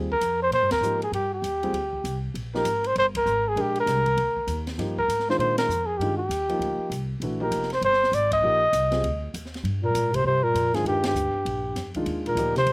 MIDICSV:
0, 0, Header, 1, 7, 480
1, 0, Start_track
1, 0, Key_signature, -3, "major"
1, 0, Tempo, 303951
1, 1778, Time_signature, 4, 2, 24, 8
1, 20099, End_track
2, 0, Start_track
2, 0, Title_t, "Trumpet"
2, 0, Program_c, 0, 56
2, 183, Note_on_c, 0, 70, 78
2, 615, Note_off_c, 0, 70, 0
2, 666, Note_on_c, 0, 72, 87
2, 820, Note_off_c, 0, 72, 0
2, 840, Note_on_c, 0, 72, 88
2, 1106, Note_off_c, 0, 72, 0
2, 1137, Note_on_c, 0, 70, 78
2, 1574, Note_off_c, 0, 70, 0
2, 1636, Note_on_c, 0, 68, 72
2, 1787, Note_off_c, 0, 68, 0
2, 1804, Note_on_c, 0, 67, 77
2, 2069, Note_off_c, 0, 67, 0
2, 2111, Note_on_c, 0, 67, 69
2, 3475, Note_off_c, 0, 67, 0
2, 4029, Note_on_c, 0, 70, 82
2, 4527, Note_on_c, 0, 72, 83
2, 4551, Note_off_c, 0, 70, 0
2, 4689, Note_off_c, 0, 72, 0
2, 4718, Note_on_c, 0, 72, 91
2, 4841, Note_off_c, 0, 72, 0
2, 5004, Note_on_c, 0, 70, 91
2, 5501, Note_on_c, 0, 68, 78
2, 5524, Note_off_c, 0, 70, 0
2, 5705, Note_on_c, 0, 67, 80
2, 5728, Note_off_c, 0, 68, 0
2, 5965, Note_off_c, 0, 67, 0
2, 6000, Note_on_c, 0, 70, 83
2, 7342, Note_off_c, 0, 70, 0
2, 7869, Note_on_c, 0, 70, 81
2, 8306, Note_off_c, 0, 70, 0
2, 8370, Note_on_c, 0, 72, 86
2, 8505, Note_off_c, 0, 72, 0
2, 8514, Note_on_c, 0, 72, 89
2, 8790, Note_off_c, 0, 72, 0
2, 8811, Note_on_c, 0, 70, 80
2, 9256, Note_on_c, 0, 68, 73
2, 9280, Note_off_c, 0, 70, 0
2, 9435, Note_on_c, 0, 67, 80
2, 9458, Note_off_c, 0, 68, 0
2, 9735, Note_off_c, 0, 67, 0
2, 9745, Note_on_c, 0, 67, 76
2, 11132, Note_off_c, 0, 67, 0
2, 11718, Note_on_c, 0, 70, 72
2, 12149, Note_off_c, 0, 70, 0
2, 12203, Note_on_c, 0, 72, 75
2, 12355, Note_off_c, 0, 72, 0
2, 12388, Note_on_c, 0, 72, 90
2, 12857, Note_on_c, 0, 74, 85
2, 12881, Note_off_c, 0, 72, 0
2, 13139, Note_off_c, 0, 74, 0
2, 13159, Note_on_c, 0, 75, 90
2, 14698, Note_off_c, 0, 75, 0
2, 15550, Note_on_c, 0, 70, 82
2, 16032, Note_on_c, 0, 72, 82
2, 16056, Note_off_c, 0, 70, 0
2, 16197, Note_off_c, 0, 72, 0
2, 16205, Note_on_c, 0, 72, 91
2, 16478, Note_on_c, 0, 70, 84
2, 16501, Note_off_c, 0, 72, 0
2, 16974, Note_on_c, 0, 68, 71
2, 16997, Note_off_c, 0, 70, 0
2, 17147, Note_off_c, 0, 68, 0
2, 17174, Note_on_c, 0, 67, 75
2, 17433, Note_off_c, 0, 67, 0
2, 17482, Note_on_c, 0, 67, 69
2, 18831, Note_off_c, 0, 67, 0
2, 19385, Note_on_c, 0, 70, 75
2, 19813, Note_off_c, 0, 70, 0
2, 19863, Note_on_c, 0, 72, 79
2, 20099, Note_off_c, 0, 72, 0
2, 20099, End_track
3, 0, Start_track
3, 0, Title_t, "Grand piano"
3, 0, Program_c, 1, 0
3, 1302, Note_on_c, 1, 53, 54
3, 1317, Note_on_c, 1, 63, 48
3, 1318, Note_on_c, 1, 58, 50
3, 1320, Note_on_c, 1, 67, 58
3, 1568, Note_off_c, 1, 53, 0
3, 1575, Note_off_c, 1, 63, 0
3, 1576, Note_off_c, 1, 58, 0
3, 1577, Note_off_c, 1, 67, 0
3, 2574, Note_on_c, 1, 60, 49
3, 2577, Note_on_c, 1, 55, 52
3, 2580, Note_on_c, 1, 65, 48
3, 2587, Note_on_c, 1, 68, 59
3, 2731, Note_off_c, 1, 60, 0
3, 2733, Note_off_c, 1, 55, 0
3, 2734, Note_off_c, 1, 65, 0
3, 2738, Note_off_c, 1, 68, 0
3, 4016, Note_on_c, 1, 53, 59
3, 4022, Note_on_c, 1, 58, 55
3, 4023, Note_on_c, 1, 63, 55
3, 4036, Note_on_c, 1, 67, 64
3, 4175, Note_off_c, 1, 53, 0
3, 4177, Note_off_c, 1, 58, 0
3, 4178, Note_off_c, 1, 63, 0
3, 4185, Note_off_c, 1, 67, 0
3, 5635, Note_on_c, 1, 56, 57
3, 5640, Note_on_c, 1, 62, 53
3, 5644, Note_on_c, 1, 67, 53
3, 5645, Note_on_c, 1, 70, 66
3, 6351, Note_off_c, 1, 56, 0
3, 6354, Note_off_c, 1, 62, 0
3, 6355, Note_off_c, 1, 67, 0
3, 6356, Note_off_c, 1, 70, 0
3, 7551, Note_on_c, 1, 53, 54
3, 7563, Note_on_c, 1, 63, 47
3, 7565, Note_on_c, 1, 58, 46
3, 7570, Note_on_c, 1, 67, 56
3, 7819, Note_off_c, 1, 53, 0
3, 7825, Note_off_c, 1, 63, 0
3, 7826, Note_off_c, 1, 58, 0
3, 7829, Note_off_c, 1, 67, 0
3, 8343, Note_on_c, 1, 51, 57
3, 8347, Note_on_c, 1, 62, 53
3, 8350, Note_on_c, 1, 56, 51
3, 8358, Note_on_c, 1, 65, 65
3, 8962, Note_off_c, 1, 51, 0
3, 8964, Note_off_c, 1, 62, 0
3, 8966, Note_off_c, 1, 56, 0
3, 8970, Note_off_c, 1, 65, 0
3, 9494, Note_on_c, 1, 51, 47
3, 9499, Note_on_c, 1, 62, 47
3, 9500, Note_on_c, 1, 56, 46
3, 9510, Note_on_c, 1, 65, 56
3, 9750, Note_off_c, 1, 51, 0
3, 9753, Note_off_c, 1, 56, 0
3, 9753, Note_off_c, 1, 62, 0
3, 9758, Note_off_c, 1, 65, 0
3, 10246, Note_on_c, 1, 53, 57
3, 10252, Note_on_c, 1, 58, 51
3, 10252, Note_on_c, 1, 63, 51
3, 10256, Note_on_c, 1, 65, 62
3, 10873, Note_off_c, 1, 53, 0
3, 10876, Note_off_c, 1, 58, 0
3, 10876, Note_off_c, 1, 63, 0
3, 10878, Note_off_c, 1, 65, 0
3, 11405, Note_on_c, 1, 52, 52
3, 11414, Note_on_c, 1, 57, 49
3, 11414, Note_on_c, 1, 62, 50
3, 11427, Note_on_c, 1, 66, 57
3, 11664, Note_off_c, 1, 52, 0
3, 11669, Note_off_c, 1, 57, 0
3, 11669, Note_off_c, 1, 62, 0
3, 11676, Note_off_c, 1, 66, 0
3, 11695, Note_on_c, 1, 53, 53
3, 11699, Note_on_c, 1, 58, 51
3, 11700, Note_on_c, 1, 63, 48
3, 11711, Note_on_c, 1, 67, 61
3, 12111, Note_off_c, 1, 53, 0
3, 12113, Note_off_c, 1, 58, 0
3, 12113, Note_off_c, 1, 63, 0
3, 12118, Note_off_c, 1, 67, 0
3, 13308, Note_on_c, 1, 53, 54
3, 13315, Note_on_c, 1, 58, 50
3, 13318, Note_on_c, 1, 63, 47
3, 13328, Note_on_c, 1, 67, 58
3, 13574, Note_off_c, 1, 53, 0
3, 13578, Note_off_c, 1, 58, 0
3, 13579, Note_off_c, 1, 63, 0
3, 13584, Note_off_c, 1, 67, 0
3, 14072, Note_on_c, 1, 55, 52
3, 14081, Note_on_c, 1, 60, 49
3, 14082, Note_on_c, 1, 65, 46
3, 14091, Note_on_c, 1, 68, 57
3, 14241, Note_off_c, 1, 55, 0
3, 14246, Note_off_c, 1, 60, 0
3, 14246, Note_off_c, 1, 65, 0
3, 14251, Note_off_c, 1, 68, 0
3, 16956, Note_on_c, 1, 51, 57
3, 16956, Note_on_c, 1, 56, 54
3, 16958, Note_on_c, 1, 62, 52
3, 16968, Note_on_c, 1, 65, 64
3, 17580, Note_off_c, 1, 51, 0
3, 17580, Note_off_c, 1, 56, 0
3, 17581, Note_off_c, 1, 62, 0
3, 17586, Note_off_c, 1, 65, 0
3, 18887, Note_on_c, 1, 51, 58
3, 18890, Note_on_c, 1, 56, 54
3, 18896, Note_on_c, 1, 65, 65
3, 18897, Note_on_c, 1, 62, 56
3, 19503, Note_off_c, 1, 51, 0
3, 19505, Note_off_c, 1, 56, 0
3, 19508, Note_off_c, 1, 62, 0
3, 19508, Note_off_c, 1, 65, 0
3, 19545, Note_on_c, 1, 58, 48
3, 19546, Note_on_c, 1, 53, 55
3, 19547, Note_on_c, 1, 63, 51
3, 19563, Note_on_c, 1, 67, 57
3, 19804, Note_off_c, 1, 58, 0
3, 19805, Note_off_c, 1, 53, 0
3, 19806, Note_off_c, 1, 63, 0
3, 19814, Note_off_c, 1, 67, 0
3, 20099, End_track
4, 0, Start_track
4, 0, Title_t, "Bass clarinet"
4, 0, Program_c, 2, 71
4, 15513, Note_on_c, 2, 46, 74
4, 15989, Note_on_c, 2, 48, 73
4, 16013, Note_off_c, 2, 46, 0
4, 16176, Note_off_c, 2, 48, 0
4, 16187, Note_on_c, 2, 48, 75
4, 16473, Note_on_c, 2, 46, 72
4, 16497, Note_off_c, 2, 48, 0
4, 16958, Note_on_c, 2, 44, 67
4, 16981, Note_off_c, 2, 46, 0
4, 17134, Note_off_c, 2, 44, 0
4, 17143, Note_on_c, 2, 43, 69
4, 17416, Note_off_c, 2, 43, 0
4, 17450, Note_on_c, 2, 43, 61
4, 18815, Note_off_c, 2, 43, 0
4, 19343, Note_on_c, 2, 46, 60
4, 19791, Note_off_c, 2, 46, 0
4, 19833, Note_on_c, 2, 48, 71
4, 20099, Note_off_c, 2, 48, 0
4, 20099, End_track
5, 0, Start_track
5, 0, Title_t, "Upright bass"
5, 0, Program_c, 3, 32
5, 0, Note_on_c, 3, 39, 74
5, 321, Note_off_c, 3, 39, 0
5, 332, Note_on_c, 3, 41, 79
5, 794, Note_off_c, 3, 41, 0
5, 803, Note_on_c, 3, 46, 65
5, 983, Note_off_c, 3, 46, 0
5, 983, Note_on_c, 3, 43, 50
5, 1126, Note_off_c, 3, 43, 0
5, 1135, Note_on_c, 3, 39, 56
5, 1263, Note_off_c, 3, 39, 0
5, 1273, Note_on_c, 3, 44, 76
5, 1751, Note_off_c, 3, 44, 0
5, 1763, Note_on_c, 3, 43, 75
5, 2234, Note_off_c, 3, 43, 0
5, 2243, Note_on_c, 3, 39, 82
5, 2713, Note_off_c, 3, 39, 0
5, 2723, Note_on_c, 3, 38, 69
5, 3199, Note_off_c, 3, 38, 0
5, 3222, Note_on_c, 3, 36, 79
5, 3689, Note_off_c, 3, 36, 0
5, 3699, Note_on_c, 3, 34, 72
5, 4169, Note_off_c, 3, 34, 0
5, 4188, Note_on_c, 3, 32, 80
5, 4654, Note_off_c, 3, 32, 0
5, 4666, Note_on_c, 3, 31, 72
5, 5134, Note_off_c, 3, 31, 0
5, 5142, Note_on_c, 3, 32, 77
5, 5612, Note_off_c, 3, 32, 0
5, 5621, Note_on_c, 3, 34, 76
5, 6091, Note_off_c, 3, 34, 0
5, 6100, Note_on_c, 3, 36, 77
5, 6571, Note_off_c, 3, 36, 0
5, 6586, Note_on_c, 3, 38, 73
5, 7055, Note_off_c, 3, 38, 0
5, 7062, Note_on_c, 3, 39, 74
5, 7533, Note_off_c, 3, 39, 0
5, 7550, Note_on_c, 3, 43, 72
5, 8017, Note_off_c, 3, 43, 0
5, 8024, Note_on_c, 3, 44, 72
5, 8494, Note_off_c, 3, 44, 0
5, 8506, Note_on_c, 3, 46, 73
5, 8965, Note_off_c, 3, 46, 0
5, 8975, Note_on_c, 3, 41, 77
5, 9449, Note_off_c, 3, 41, 0
5, 9467, Note_on_c, 3, 43, 74
5, 9925, Note_off_c, 3, 43, 0
5, 9935, Note_on_c, 3, 39, 76
5, 10399, Note_off_c, 3, 39, 0
5, 10409, Note_on_c, 3, 38, 76
5, 10695, Note_off_c, 3, 38, 0
5, 10890, Note_on_c, 3, 36, 74
5, 11361, Note_off_c, 3, 36, 0
5, 11370, Note_on_c, 3, 34, 75
5, 11845, Note_off_c, 3, 34, 0
5, 11860, Note_on_c, 3, 29, 78
5, 12329, Note_off_c, 3, 29, 0
5, 12340, Note_on_c, 3, 31, 73
5, 12809, Note_off_c, 3, 31, 0
5, 12818, Note_on_c, 3, 32, 76
5, 13284, Note_off_c, 3, 32, 0
5, 13293, Note_on_c, 3, 34, 72
5, 13764, Note_off_c, 3, 34, 0
5, 13781, Note_on_c, 3, 36, 76
5, 14248, Note_off_c, 3, 36, 0
5, 14262, Note_on_c, 3, 38, 69
5, 14728, Note_off_c, 3, 38, 0
5, 14746, Note_on_c, 3, 39, 80
5, 15209, Note_off_c, 3, 39, 0
5, 15217, Note_on_c, 3, 43, 74
5, 15684, Note_off_c, 3, 43, 0
5, 15703, Note_on_c, 3, 44, 75
5, 16167, Note_off_c, 3, 44, 0
5, 16174, Note_on_c, 3, 43, 74
5, 16642, Note_off_c, 3, 43, 0
5, 16649, Note_on_c, 3, 41, 80
5, 17102, Note_off_c, 3, 41, 0
5, 17111, Note_on_c, 3, 39, 72
5, 17583, Note_off_c, 3, 39, 0
5, 17593, Note_on_c, 3, 38, 77
5, 17879, Note_off_c, 3, 38, 0
5, 18083, Note_on_c, 3, 34, 72
5, 18553, Note_off_c, 3, 34, 0
5, 18567, Note_on_c, 3, 41, 79
5, 19034, Note_off_c, 3, 41, 0
5, 19043, Note_on_c, 3, 39, 76
5, 19500, Note_off_c, 3, 39, 0
5, 19509, Note_on_c, 3, 38, 77
5, 19984, Note_off_c, 3, 38, 0
5, 19997, Note_on_c, 3, 31, 73
5, 20099, Note_off_c, 3, 31, 0
5, 20099, End_track
6, 0, Start_track
6, 0, Title_t, "Muted upright bass strokes"
6, 10714, Note_on_c, 9, 29, 34
6, 10872, Note_off_c, 9, 29, 0
6, 17905, Note_on_c, 9, 29, 34
6, 18063, Note_off_c, 9, 29, 0
6, 20099, End_track
7, 0, Start_track
7, 0, Title_t, "Drums"
7, 159, Note_on_c, 9, 36, 38
7, 317, Note_off_c, 9, 36, 0
7, 336, Note_on_c, 9, 44, 56
7, 336, Note_on_c, 9, 51, 58
7, 494, Note_off_c, 9, 44, 0
7, 494, Note_off_c, 9, 51, 0
7, 823, Note_on_c, 9, 51, 52
7, 981, Note_off_c, 9, 51, 0
7, 1118, Note_on_c, 9, 51, 58
7, 1121, Note_on_c, 9, 38, 66
7, 1276, Note_off_c, 9, 51, 0
7, 1279, Note_off_c, 9, 38, 0
7, 1311, Note_on_c, 9, 44, 52
7, 1469, Note_off_c, 9, 44, 0
7, 1610, Note_on_c, 9, 51, 37
7, 1768, Note_off_c, 9, 51, 0
7, 1790, Note_on_c, 9, 51, 53
7, 1948, Note_off_c, 9, 51, 0
7, 2271, Note_on_c, 9, 44, 49
7, 2271, Note_on_c, 9, 51, 57
7, 2429, Note_off_c, 9, 44, 0
7, 2429, Note_off_c, 9, 51, 0
7, 2573, Note_on_c, 9, 51, 36
7, 2731, Note_off_c, 9, 51, 0
7, 2746, Note_on_c, 9, 51, 49
7, 2904, Note_off_c, 9, 51, 0
7, 3047, Note_on_c, 9, 36, 43
7, 3205, Note_off_c, 9, 36, 0
7, 3234, Note_on_c, 9, 44, 57
7, 3234, Note_on_c, 9, 51, 55
7, 3392, Note_off_c, 9, 44, 0
7, 3392, Note_off_c, 9, 51, 0
7, 3715, Note_on_c, 9, 51, 49
7, 3873, Note_off_c, 9, 51, 0
7, 4021, Note_on_c, 9, 38, 35
7, 4179, Note_off_c, 9, 38, 0
7, 4185, Note_on_c, 9, 44, 55
7, 4185, Note_on_c, 9, 51, 61
7, 4343, Note_off_c, 9, 44, 0
7, 4343, Note_off_c, 9, 51, 0
7, 4489, Note_on_c, 9, 51, 40
7, 4647, Note_off_c, 9, 51, 0
7, 4669, Note_on_c, 9, 51, 46
7, 4827, Note_off_c, 9, 51, 0
7, 4973, Note_on_c, 9, 36, 69
7, 4973, Note_on_c, 9, 51, 65
7, 5131, Note_off_c, 9, 36, 0
7, 5131, Note_off_c, 9, 51, 0
7, 5152, Note_on_c, 9, 44, 56
7, 5310, Note_off_c, 9, 44, 0
7, 5638, Note_on_c, 9, 51, 48
7, 5796, Note_off_c, 9, 51, 0
7, 5931, Note_on_c, 9, 51, 38
7, 6088, Note_off_c, 9, 51, 0
7, 6114, Note_on_c, 9, 44, 55
7, 6114, Note_on_c, 9, 51, 58
7, 6117, Note_on_c, 9, 38, 34
7, 6272, Note_off_c, 9, 44, 0
7, 6272, Note_off_c, 9, 51, 0
7, 6275, Note_off_c, 9, 38, 0
7, 6411, Note_on_c, 9, 51, 39
7, 6417, Note_on_c, 9, 36, 47
7, 6569, Note_off_c, 9, 51, 0
7, 6575, Note_off_c, 9, 36, 0
7, 6592, Note_on_c, 9, 51, 53
7, 6750, Note_off_c, 9, 51, 0
7, 6896, Note_on_c, 9, 36, 48
7, 7054, Note_off_c, 9, 36, 0
7, 7068, Note_on_c, 9, 44, 50
7, 7068, Note_on_c, 9, 51, 59
7, 7226, Note_off_c, 9, 44, 0
7, 7226, Note_off_c, 9, 51, 0
7, 7375, Note_on_c, 9, 51, 39
7, 7378, Note_on_c, 9, 38, 46
7, 7533, Note_off_c, 9, 51, 0
7, 7536, Note_off_c, 9, 38, 0
7, 7562, Note_on_c, 9, 51, 48
7, 7566, Note_on_c, 9, 38, 33
7, 7720, Note_off_c, 9, 51, 0
7, 7724, Note_off_c, 9, 38, 0
7, 7864, Note_on_c, 9, 36, 46
7, 8022, Note_off_c, 9, 36, 0
7, 8047, Note_on_c, 9, 44, 46
7, 8047, Note_on_c, 9, 51, 64
7, 8205, Note_off_c, 9, 44, 0
7, 8205, Note_off_c, 9, 51, 0
7, 8205, Note_on_c, 9, 38, 26
7, 8363, Note_off_c, 9, 38, 0
7, 8372, Note_on_c, 9, 38, 37
7, 8528, Note_on_c, 9, 51, 44
7, 8530, Note_off_c, 9, 38, 0
7, 8686, Note_off_c, 9, 51, 0
7, 8809, Note_on_c, 9, 51, 62
7, 8813, Note_on_c, 9, 38, 72
7, 8967, Note_off_c, 9, 51, 0
7, 8970, Note_off_c, 9, 38, 0
7, 9004, Note_on_c, 9, 44, 58
7, 9162, Note_off_c, 9, 44, 0
7, 9492, Note_on_c, 9, 51, 51
7, 9650, Note_off_c, 9, 51, 0
7, 9961, Note_on_c, 9, 44, 59
7, 9961, Note_on_c, 9, 51, 62
7, 10119, Note_off_c, 9, 44, 0
7, 10119, Note_off_c, 9, 51, 0
7, 10255, Note_on_c, 9, 51, 40
7, 10413, Note_off_c, 9, 51, 0
7, 10449, Note_on_c, 9, 51, 45
7, 10607, Note_off_c, 9, 51, 0
7, 10921, Note_on_c, 9, 44, 58
7, 10921, Note_on_c, 9, 51, 57
7, 11079, Note_off_c, 9, 44, 0
7, 11079, Note_off_c, 9, 51, 0
7, 11395, Note_on_c, 9, 51, 52
7, 11553, Note_off_c, 9, 51, 0
7, 11870, Note_on_c, 9, 44, 50
7, 11870, Note_on_c, 9, 51, 63
7, 12028, Note_off_c, 9, 44, 0
7, 12028, Note_off_c, 9, 51, 0
7, 12045, Note_on_c, 9, 38, 26
7, 12159, Note_on_c, 9, 51, 38
7, 12196, Note_off_c, 9, 38, 0
7, 12196, Note_on_c, 9, 38, 36
7, 12317, Note_off_c, 9, 51, 0
7, 12354, Note_off_c, 9, 38, 0
7, 12355, Note_on_c, 9, 51, 53
7, 12513, Note_off_c, 9, 51, 0
7, 12523, Note_on_c, 9, 38, 26
7, 12681, Note_off_c, 9, 38, 0
7, 12690, Note_on_c, 9, 38, 39
7, 12840, Note_on_c, 9, 44, 51
7, 12840, Note_on_c, 9, 51, 59
7, 12847, Note_off_c, 9, 38, 0
7, 12998, Note_off_c, 9, 44, 0
7, 12998, Note_off_c, 9, 51, 0
7, 13132, Note_on_c, 9, 51, 62
7, 13133, Note_on_c, 9, 36, 74
7, 13290, Note_off_c, 9, 51, 0
7, 13291, Note_off_c, 9, 36, 0
7, 13788, Note_on_c, 9, 44, 57
7, 13788, Note_on_c, 9, 51, 60
7, 13945, Note_off_c, 9, 44, 0
7, 13945, Note_off_c, 9, 51, 0
7, 14081, Note_on_c, 9, 51, 38
7, 14084, Note_on_c, 9, 38, 41
7, 14239, Note_off_c, 9, 51, 0
7, 14242, Note_off_c, 9, 38, 0
7, 14273, Note_on_c, 9, 51, 48
7, 14431, Note_off_c, 9, 51, 0
7, 14754, Note_on_c, 9, 44, 61
7, 14754, Note_on_c, 9, 51, 57
7, 14912, Note_off_c, 9, 44, 0
7, 14912, Note_off_c, 9, 51, 0
7, 14931, Note_on_c, 9, 38, 27
7, 15068, Note_on_c, 9, 51, 39
7, 15087, Note_off_c, 9, 38, 0
7, 15087, Note_on_c, 9, 38, 38
7, 15226, Note_off_c, 9, 51, 0
7, 15237, Note_on_c, 9, 51, 47
7, 15245, Note_off_c, 9, 38, 0
7, 15395, Note_off_c, 9, 51, 0
7, 15711, Note_on_c, 9, 44, 55
7, 15711, Note_on_c, 9, 51, 60
7, 15869, Note_off_c, 9, 44, 0
7, 15869, Note_off_c, 9, 51, 0
7, 16009, Note_on_c, 9, 36, 51
7, 16014, Note_on_c, 9, 51, 59
7, 16167, Note_off_c, 9, 36, 0
7, 16172, Note_off_c, 9, 51, 0
7, 16667, Note_on_c, 9, 44, 43
7, 16667, Note_on_c, 9, 51, 57
7, 16825, Note_off_c, 9, 44, 0
7, 16825, Note_off_c, 9, 51, 0
7, 16965, Note_on_c, 9, 51, 39
7, 16968, Note_on_c, 9, 38, 37
7, 17123, Note_off_c, 9, 51, 0
7, 17126, Note_off_c, 9, 38, 0
7, 17150, Note_on_c, 9, 51, 48
7, 17308, Note_off_c, 9, 51, 0
7, 17427, Note_on_c, 9, 51, 58
7, 17430, Note_on_c, 9, 38, 71
7, 17585, Note_off_c, 9, 51, 0
7, 17588, Note_off_c, 9, 38, 0
7, 17616, Note_on_c, 9, 44, 60
7, 17774, Note_off_c, 9, 44, 0
7, 18099, Note_on_c, 9, 51, 53
7, 18257, Note_off_c, 9, 51, 0
7, 18572, Note_on_c, 9, 44, 51
7, 18572, Note_on_c, 9, 51, 54
7, 18575, Note_on_c, 9, 38, 34
7, 18730, Note_off_c, 9, 44, 0
7, 18730, Note_off_c, 9, 51, 0
7, 18733, Note_off_c, 9, 38, 0
7, 18862, Note_on_c, 9, 51, 39
7, 18872, Note_on_c, 9, 36, 48
7, 19020, Note_off_c, 9, 51, 0
7, 19030, Note_off_c, 9, 36, 0
7, 19045, Note_on_c, 9, 51, 52
7, 19203, Note_off_c, 9, 51, 0
7, 19360, Note_on_c, 9, 51, 41
7, 19518, Note_off_c, 9, 51, 0
7, 19534, Note_on_c, 9, 44, 53
7, 19534, Note_on_c, 9, 51, 58
7, 19692, Note_off_c, 9, 44, 0
7, 19692, Note_off_c, 9, 51, 0
7, 19834, Note_on_c, 9, 51, 38
7, 19837, Note_on_c, 9, 38, 39
7, 19992, Note_off_c, 9, 51, 0
7, 19995, Note_off_c, 9, 38, 0
7, 20001, Note_on_c, 9, 51, 50
7, 20099, Note_off_c, 9, 51, 0
7, 20099, End_track
0, 0, End_of_file